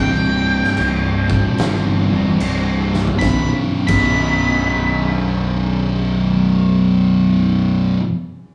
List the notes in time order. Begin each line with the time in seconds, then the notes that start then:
Already playing: C1 C2 G2 C3 G5
0.64 snare
0.77 C1, crash
1.28 C2 G2 C3, kick
1.58 G1, snare, crash
2.10 E1 C2 G2 C3
2.39 C1 C2 G2 C3, crash
2.94 snare
3.07 floor tom
3.19 B0 B1 F#2 B2 B5, kick, snare
3.87 B0 B1 F#2 B2 B5, kick, crash